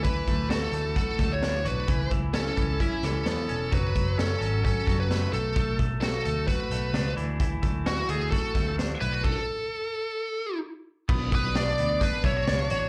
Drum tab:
CC |--------|--------|--------|--------|
HH |xxxxxxxx|xxxxxxxx|xxxxxxxx|xxxxxxxx|
SD |--o--oo-|--o--oo-|--o--oo-|--o---o-|
BD |oo--oo--|oo-oo---|oo--oo--|oo--o---|

CC |--------|x-------|x-------|
HH |xxxxxxxx|--------|-xxxxxxx|
SD |--o--oo-|--------|--o---o-|
BD |oo--oo--|o-------|oo--oo--|